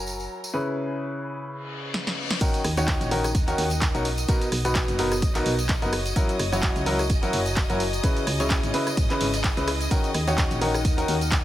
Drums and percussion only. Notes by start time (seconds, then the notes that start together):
0.07 tambourine
0.20 tambourine
0.44 tambourine
1.94 snare
2.07 snare
2.31 snare
2.41 kick, closed hi-hat, ride, tambourine, crash
2.54 closed hi-hat, tambourine
2.64 cross-stick, open hi-hat, ride
2.77 closed hi-hat, tambourine
2.88 kick, snare, clap, closed hi-hat, ride, tambourine
3.01 closed hi-hat, ride, tambourine
3.11 open hi-hat, ride
3.24 cross-stick, snare, closed hi-hat, tambourine
3.35 kick, closed hi-hat, ride, tambourine
3.47 closed hi-hat, tambourine
3.58 open hi-hat, ride
3.70 snare, closed hi-hat, tambourine
3.72 tambourine
3.82 kick, snare, clap, closed hi-hat, ride, tambourine
3.95 closed hi-hat, ride, tambourine
4.05 open hi-hat, ride
4.18 closed hi-hat, tambourine
4.28 kick, closed hi-hat, ride, tambourine
4.41 snare, closed hi-hat, tambourine
4.52 cross-stick, open hi-hat
4.65 closed hi-hat, ride, tambourine
4.75 kick, snare, clap, closed hi-hat, ride, tambourine
4.88 closed hi-hat, ride, tambourine
4.99 snare, open hi-hat, ride
5.11 cross-stick, closed hi-hat, tambourine
5.22 kick, closed hi-hat, ride, tambourine
5.35 snare, clap, closed hi-hat, ride, tambourine
5.46 open hi-hat
5.59 closed hi-hat, ride, tambourine
5.69 kick, snare, clap, closed hi-hat, ride, tambourine
5.82 closed hi-hat, tambourine
5.93 cross-stick, open hi-hat, ride
6.05 closed hi-hat, tambourine
6.16 kick, closed hi-hat, ride, tambourine
6.29 closed hi-hat, tambourine
6.39 cross-stick, open hi-hat, ride
6.52 closed hi-hat, tambourine
6.63 kick, snare, clap, closed hi-hat, ride, tambourine
6.76 closed hi-hat, ride, tambourine
6.86 open hi-hat, ride
6.99 cross-stick, snare, closed hi-hat, tambourine
7.10 kick, closed hi-hat, ride, tambourine
7.22 closed hi-hat, tambourine
7.33 open hi-hat, ride
7.46 snare, closed hi-hat, tambourine
7.57 kick, snare, clap, closed hi-hat, ride, tambourine
7.69 closed hi-hat, ride, tambourine
7.80 open hi-hat, ride
7.93 closed hi-hat, tambourine
8.03 kick, closed hi-hat, ride, tambourine
8.16 snare, closed hi-hat, tambourine
8.27 cross-stick, open hi-hat
8.40 closed hi-hat, ride, tambourine
8.50 kick, snare, clap, closed hi-hat, ride, tambourine
8.63 closed hi-hat, ride, tambourine
8.74 open hi-hat, ride
8.87 cross-stick, snare, closed hi-hat, tambourine
8.97 kick, closed hi-hat, ride, tambourine
9.10 clap, closed hi-hat, ride, tambourine
9.21 snare, open hi-hat, ride
9.34 snare, closed hi-hat, ride, tambourine
9.44 kick, snare, clap, closed hi-hat, ride, tambourine
9.57 closed hi-hat, tambourine
9.68 cross-stick, snare, open hi-hat, ride
9.81 closed hi-hat, ride, tambourine
9.91 kick, closed hi-hat, ride, tambourine
10.04 closed hi-hat, tambourine
10.14 cross-stick, open hi-hat, ride
10.27 closed hi-hat, tambourine
10.38 kick, snare, clap, closed hi-hat, ride, tambourine
10.51 closed hi-hat, ride, tambourine
10.61 open hi-hat, ride
10.74 cross-stick, snare, closed hi-hat, tambourine
10.85 kick, closed hi-hat, ride, tambourine
10.98 closed hi-hat, tambourine
11.08 open hi-hat, ride
11.21 snare, closed hi-hat, tambourine
11.31 kick, snare, clap, closed hi-hat, ride, tambourine